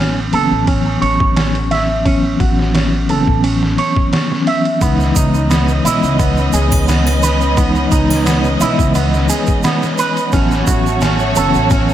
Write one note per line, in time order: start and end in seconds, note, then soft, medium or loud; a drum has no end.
0.00 0.30 A1 medium
0.00 0.29 E3 medium
0.00 0.29 F#3 medium
0.00 0.30 B3 medium
0.00 0.19 C#4 medium
0.00 0.30 C#4 medium
0.33 0.49 F#1 medium
0.33 2.01 E3 medium
0.33 2.02 F#3 medium
0.33 2.02 B3 medium
0.33 2.03 C#4 medium
0.33 0.64 A4 medium
0.33 ride medium
0.51 0.99 A1 medium
0.67 0.99 C#4 medium
0.67 kick loud
0.67 ride medium
1.02 2.37 A1 medium
1.02 1.35 C#5 medium
1.02 ride medium
1.20 kick medium
1.36 1.57 C#4 medium
1.36 snare loud
1.36 ride medium
1.55 ride soft
1.71 2.04 E5 medium
1.71 snare soft
1.71 ride medium
2.05 3.05 E3 medium
2.05 3.05 F#3 medium
2.05 3.06 B3 medium
2.05 2.38 C#4 medium
2.05 3.06 C#4 medium
2.05 kick loud
2.05 ride medium
2.40 3.06 A1 medium
2.40 2.73 F#4 medium
2.40 kick medium
2.40 ride medium
2.59 snare soft
2.74 2.95 C#4 medium
2.74 snare loud
2.74 ride medium
3.09 3.25 F#1 medium
3.09 4.27 E3 medium
3.09 4.28 F#3 medium
3.09 4.28 B3 medium
3.09 4.28 C#4 medium
3.09 3.40 A4 medium
3.09 ride medium
3.27 3.75 A1 medium
3.27 kick medium
3.44 3.75 C#4 medium
3.44 ride medium
3.63 snare soft
3.78 4.11 C#5 medium
3.78 ride medium
3.96 kick medium
4.13 4.33 C#4 medium
4.13 snare loud
4.13 ride medium
4.31 4.78 E3 medium
4.31 4.78 F#3 medium
4.31 4.78 B3 medium
4.31 4.78 C#4 medium
4.31 snare soft
4.47 4.80 E5 medium
4.47 ride medium
4.65 ride soft
4.81 5.12 C#2 medium
4.81 5.81 E3 medium
4.81 5.81 G#3 medium
4.81 5.14 B3 medium
4.81 5.82 B3 medium
4.81 10.29 C#4 medium
4.81 10.29 B4 medium
4.81 10.29 D#5 medium
4.81 kick loud
4.81 ride medium
4.81 shaker medium
5.00 snare soft
5.00 shaker soft
5.16 5.82 C#2 medium
5.16 5.49 D#4 medium
5.16 kick medium
5.16 ride medium
5.16 shaker medium
5.34 shaker soft
5.50 5.71 B3 medium
5.50 snare loud
5.50 ride medium
5.50 shaker soft
5.68 shaker soft
5.85 6.01 B1 medium
5.85 7.53 E3 medium
5.85 7.54 G#3 medium
5.85 7.54 B3 medium
5.85 6.16 E4 medium
5.85 7.55 D#5 medium
5.85 ride medium
5.85 shaker medium
6.03 6.51 C#2 medium
6.03 shaker soft
6.19 6.50 B3 medium
6.19 kick loud
6.19 ride medium
6.19 shaker soft
6.37 shaker soft
6.53 7.89 C#2 medium
6.53 6.87 G#4 medium
6.53 ride medium
6.53 shaker medium
6.71 kick medium
6.71 triangle medium
6.71 shaker soft
6.88 7.09 B3 medium
6.88 snare loud
6.88 ride medium
6.88 shaker soft
7.07 ride soft
7.07 triangle medium
7.07 shaker soft
7.23 7.55 B4 medium
7.23 snare soft
7.23 ride medium
7.23 shaker medium
7.41 shaker soft
7.57 8.56 E3 medium
7.57 8.57 G#3 medium
7.57 7.90 B3 medium
7.57 8.57 B3 medium
7.57 8.58 D#4 medium
7.57 kick loud
7.57 ride medium
7.57 shaker soft
7.75 shaker soft
7.92 8.58 C#2 medium
7.92 8.24 D#4 medium
7.92 kick medium
7.92 ride medium
7.92 shaker medium
8.10 snare soft
8.10 triangle medium
8.10 shaker soft
8.26 8.47 B3 medium
8.26 snare loud
8.26 ride medium
8.26 shaker medium
8.44 shaker soft
8.60 8.77 B1 medium
8.60 10.29 E3 medium
8.60 10.29 G#3 medium
8.60 10.30 B3 medium
8.60 8.92 E4 medium
8.60 10.30 D#5 medium
8.60 ride medium
8.60 shaker medium
8.79 9.27 C#2 medium
8.79 kick medium
8.79 shaker soft
8.95 9.26 B3 medium
8.95 ride medium
8.95 shaker soft
9.14 snare soft
9.14 shaker soft
9.29 9.62 G#4 medium
9.29 ride medium
9.29 shaker medium
9.47 kick medium
9.47 shaker soft
9.63 9.85 B3 medium
9.63 snare loud
9.63 ride medium
9.63 shaker medium
9.83 snare soft
9.83 shaker soft
9.98 10.31 B4 medium
9.98 ride medium
9.98 shaker medium
10.17 ride soft
10.17 shaker soft
10.32 10.64 A1 medium
10.32 11.32 E3 medium
10.32 11.33 F#3 medium
10.32 11.94 A3 medium
10.32 11.33 B3 medium
10.32 10.66 C#4 medium
10.32 11.34 C#4 medium
10.32 11.94 F#4 medium
10.32 11.94 C#5 medium
10.32 kick loud
10.32 ride medium
10.32 shaker soft
10.51 snare soft
10.51 shaker soft
10.67 11.34 A1 medium
10.67 11.00 F#4 medium
10.67 kick medium
10.67 ride medium
10.67 shaker medium
10.87 shaker soft
11.01 11.23 C#4 medium
11.01 snare loud
11.01 ride medium
11.01 shaker soft
11.19 shaker soft
11.36 11.53 F#1 medium
11.36 11.94 E3 medium
11.36 11.94 F#3 medium
11.36 11.94 B3 medium
11.36 11.94 C#4 medium
11.36 11.68 A4 medium
11.36 ride medium
11.36 shaker medium
11.54 11.94 A1 medium
11.54 shaker soft
11.70 11.94 C#4 medium
11.70 kick loud
11.70 ride medium
11.70 shaker soft
11.89 shaker soft